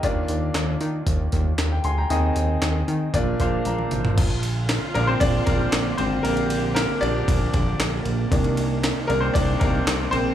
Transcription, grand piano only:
<<
  \new Staff \with { instrumentName = "Grand piano" } { \time 4/4 \key bes \mixolydian \tempo 4 = 116 << { r2. r16 g''16 <aes'' c'''>16 <g'' bes''>16~ | <g'' bes''>16 r2 r16 f''8 bes''4 | r4. bes'16 <c' c''>16 <d' d''>8 <bes bes'>4 <c' c''>8 | <bes bes'>4 <bes bes'>8 d''4. r4 |
r4. bes'16 <c' c''>16 <d' d''>8 <bes bes'>4 <c' c''>8 | } \\ { <bes d' f' d''>4. r2 r8 | <c' ees' aes' ees''>4. r8 <bes d' f' d''>8 <bes d' f' c''>4 r8 | r1 | r1 |
r1 | } >> }
  \new Staff \with { instrumentName = "Grand piano" } { \time 4/4 \key bes \mixolydian ees4. r2 r8 | ees4. r8 bes,4. r8 | r4. <f bes d'>8 r2 | r4. <f bes d'>4. r4 |
<ees bes d'>4. <ees bes d'>8 r2 | }
>>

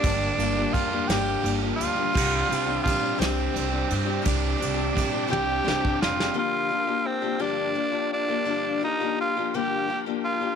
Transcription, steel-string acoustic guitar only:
\new Staff \with { instrumentName = "Steel-string acoustic guitar" } { \time 6/8 \key g \minor \tempo 4. = 57 <g, d f bes d' g'>8 <f bes d' g'>16 <f bes d' g'>8 <f bes d' g'>16 <g, d f bes d' g'>8 <f bes d' g'>16 <f bes d' g'>8 <f bes d' g'>16 | <c g c' d' g'>8 <g c' d' g'>16 <c' d' g'>8 <c' d' g'>16 <c g c' d' g'>8 <g c' d' g'>16 <c' d' g'>8 <c' d' g'>16 | <c g c' d' g'>8 <g c' d' g'>16 <c' d' g'>8 <c' d' g'>16 <c g c' d' g'>8 <g c' d' g'>16 <c' d' g'>8 <c' d' g'>16 | <g, d f bes d' g'>8 <f bes d' g'>16 <f bes d' g'>8 <f bes d' g'>16 <g, d f bes d' g'>8 <f bes d' g'>16 <f bes d' g'>8 <f bes d' g'>16 |
<g, d f bes d' g'>8 <f bes d' g'>16 <f bes d' g'>8 <f bes d' g'>16 <g, d f bes d' g'>8 <f bes d' g'>16 <f bes d' g'>8 <f bes d' g'>16 | }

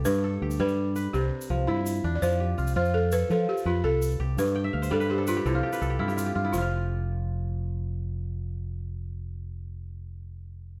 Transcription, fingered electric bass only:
\new Staff \with { instrumentName = "Fingered electric bass" } { \clef bass \time 12/8 \key f \lydian \tempo 4. = 111 g,4 d,8 g,4. c,8 r8 c,8 g,4 e,8 | f,4 c,8 f,4. f8 r8 f,8 c,4 c,8 | g,4 d,8 g,4. c,8 r8 c,8 g,4 g,8 | f,,1.~ |
f,,1. | }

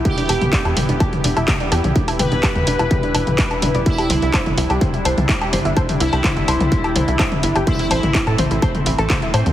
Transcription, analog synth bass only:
\new Staff \with { instrumentName = "Analog synth bass" } { \clef bass \time 4/4 \key e \minor \tempo 4 = 126 r8 e,,16 e,,16 r16 e,16 e,,16 e,,16 r8 e,,16 e,,16 r8 e,16 b,,16 | r8 e,,16 e,,16 r16 e,16 e,,16 e,,16 r8 e,,16 e,,16 r8 e,,16 e,,16 | r8 c,16 c,16 r16 g,,16 c,16 c,16 r8 c,16 c,16 r8 g,,16 g,,16 | r8 c,16 c,16 r16 g,,16 c,16 c,16 r8 c,16 c,16 r8 g,,16 g,,16 |
r8 a,,16 a,,16 r16 a,16 a,,16 a,,16 r8 a,,16 a,,16 r8 a,16 e,16 | }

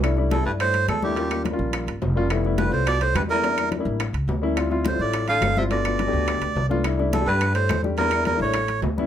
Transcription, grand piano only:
\new Staff \with { instrumentName = "Grand piano" } { \time 4/4 \key c \major \tempo 4 = 211 <g a d' e'>16 r16 <g a d' e'>8 r16 <g a d' e'>4. r8. <g a d' e'>16 r16 | <g bes des' f'>16 r16 <g bes des' f'>8 r16 <g bes des' f'>4. r8. <g bes des' f'>16 r16 | <g a b e'>16 r16 <g a b e'>8 r16 <g a b f'>4. r8. <g a b e'>16 r16 | <g bes d' e'>16 r16 <g bes d' e'>8 r16 <g bes d' e'>8. r4. <g bes cis' e'>16 r16 |
<g c' e' f'>16 r16 <g c' e' f'>8 r16 <g c' e' f'>4. r8. <g c' e' f'>16 r16 | <a b d' f'>16 r16 <a b d' f'>8 r16 <a b d' g'>4. r8. <a b d' f'>16 r16 | <g a d' e'>16 r16 <g a d' e'>8 r16 <g a d' g'>4. r8. <g a d' g'>16 r16 | <g bes d' e'>16 r16 <g bes d' e'>8 r16 <g bes d' e'>8. r4. <g b cis' e'>16 r16 | }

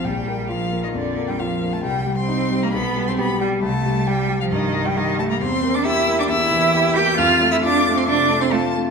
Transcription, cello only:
\new Staff \with { instrumentName = "Cello" } { \time 4/4 \key c \dorian \tempo 4 = 135 g4 f8. ees16 d8. g16 f8. a16 | g8. c'4 bes16 b8. c'16 b8 g8 | a4 g8. f16 ees8. g16 ees8 a16 bes16 | \key f \major c'8. d'16 e'8. d'16 e'4. g'8 |
f'8. e'16 d'8. c'16 d'8. c'16 a8 r8 | }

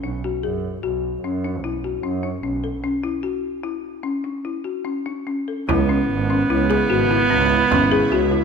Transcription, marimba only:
\new Staff \with { instrumentName = "Marimba" } { \time 7/4 \key cis \phrygian \tempo 4 = 149 d'8 fis'8 gis'4 fis'4 cis'8 d'8 e'8 fis'8 cis'8 d'8 cis'8 a'8 | cis'8 e'8 fis'4 e'4 cis'8 d'8 e'8 fis'8 cis'8 d'8 cis'8 a'8 | e'8 cis'4 cis'8 e'8 gis'8 fis'8 e'8 b4 cis'8 gis'8 fis'8 e'8 | }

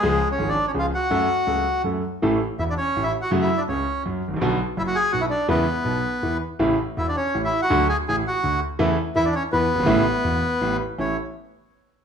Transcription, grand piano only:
\new Staff \with { instrumentName = "Grand piano" } { \clef bass \time 3/4 \key fis \minor \tempo 4 = 164 <cis, cis eis gis cis' gis'>8 r8 <gis,, gis, eis gis cis' gis'>8 r8 <cis, cis eis gis cis' gis'>8 r8 | <fis, fis a cis' a'>8 r8 <cis, cis fis a cis' a'>8 r8 <fis, fis a cis' a'>8 r8 | \key a \major <a,, a, e a cis' a'>8 r8 <e,, e,>8 r8 <a,, a,>8 r8 | <fis, cis fis a fis'>8 r8 <cis, cis>8 r8 <fis, fis>8 r32 gis,,32 a,,32 bes,,32 |
<b,, b, d fis b fis'>8 r8 <fis,, fis,>8 r8 <b,, b,>8 r8 | <e, cis e gis b e'>8 r8 <b,, b,>8 r8 <e, e>8 r8 | <a,, a, cis e a e'>8 r8 <e,, e,>8 r8 <a,, a,>8 r8 | <d, d fis a fis'>8 r8 <a,, a,>8 r8 <d, d>8 r8 |
<e, cis e a e'>8 r8 <e, e>8 r8 <e, e>8 r32 fis,,32 g,,32 gis,,32 | <a,, a, cis e a e'>8 r8 <e,, e,>8 r8 <a,, a,>8 r8 | <a,, a cis' e'>8 r2 r8 | }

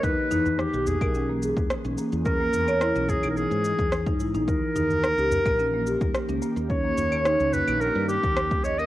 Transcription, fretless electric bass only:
\new Staff \with { instrumentName = "Fretless electric bass" } { \clef bass \time 4/4 \tempo 4 = 108 e,16 r16 e,8. b,,8 b,,4 e,16 r16 b,,16 r16 e,16~ | e,8 e,8. b,,8 b,,8 gis,8 e,8. gis,16 b,,16 | ees,16 r16 ees,8. des,8 bes,,4 ees,16 r16 des,16 r16 ees,16~ | ees,8 ees,8. des,8 bes,,8 g,8 ees,4~ ees,16 | }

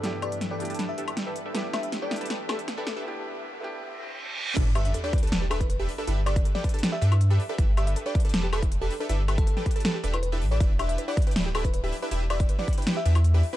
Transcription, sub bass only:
\new Staff \with { instrumentName = "Sub bass" } { \clef bass \time 4/4 \key g \major \tempo 4 = 159 r1 | r1 | r1 | g,,4 r4 e,,4. r8 |
g,,4 r4. g,4 r8 | g,,4 r4 e,,4. r8 | g,,4 r4. e,,4 a,,8 | e,,4 r4 d,,4. r8 |
e,,4 r4. e,4 r8 | }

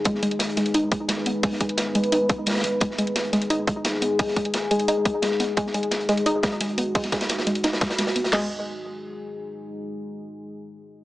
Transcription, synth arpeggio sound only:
\new Staff \with { instrumentName = "Synth arpeggio sound" } { \clef bass \time 4/4 \key gis \minor \tempo 4 = 174 gis8 gis8 r8 gis8 dis'8 gis8 gis8 b8 | gis8 gis8 r8 gis8 dis'8 gis8 gis8 gis8 | gis8 gis8 r8 gis8 dis'8 gis8 gis8 b8 | gis8 gis8 r8 gis8 dis'8 gis8 gis8 b8 |
gis8 gis8 r8 gis8 dis'8 gis8 gis8 b8 | gis8 gis8 r8 gis8 dis'8 gis8 gis8 b8 | gis8 r2. r8 | r1 | }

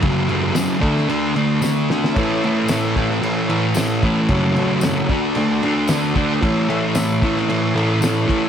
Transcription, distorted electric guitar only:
\new Staff \with { instrumentName = "Distorted electric guitar" } { \clef bass \time 4/4 \key a \major \tempo 4 = 113 <fis, cis fis>8 <fis, cis fis>8 <fis, cis fis>8 <d a d'>8 <d a d'>8 <d a d'>8 <d a d'>8 <d a d'>8 | <a, e a>8 <a, e a>8 <a, e a>8 <a, e a>8 <a, e a>8 <a, e a>8 <a, e a>8 <a, e a>8 | <fis, cis fis>8 <fis, cis fis>8 <fis, cis fis>8 <d a d'>8 <d a d'>8 <d a d'>8 <d a d'>8 <d a d'>8 | <a, e a>8 <a, e a>8 <a, e a>8 <a, e a>8 <a, e a>8 <a, e a>8 <a, e a>8 <a, e a>8 | }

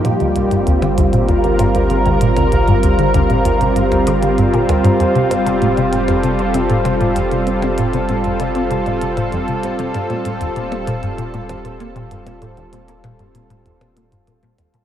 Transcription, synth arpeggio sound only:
\new Staff \with { instrumentName = "Synth arpeggio sound" } { \clef bass \time 4/4 \key g \minor \tempo 4 = 97 bes,16 d,16 c,16 g,16 d,16 d16 d,16 bes,16 d,16 c,16 g,16 d,16 d16 d,16 bes,16 d,16 | c,16 g,16 d,16 d16 d,16 bes,16 d,16 c,16 g,16 d,16 d16 d16 g,16 bes,16 d,16 g,16 | f,16 c16 c'16 c16 a,16 c16 a,16 f,16 c16 c'16 c16 a,16 c16 a,16 f,16 c16 | c'16 c16 a,16 c16 a,16 f,16 c16 c'16 c16 a,16 c16 a,16 f,16 c16 c'16 c16 |
g,16 bes,16 a,16 ees,16 bes,16 bes16 bes,16 g,16 bes,16 a,16 ees,16 bes,16 bes16 bes,16 g,16 bes,16 | a,16 ees,16 bes,16 bes16 bes,16 g,16 bes,16 a,16 ees,16 bes,16 bes,16 g,16 bes,16 bes,16 ees,16 bes,16 | }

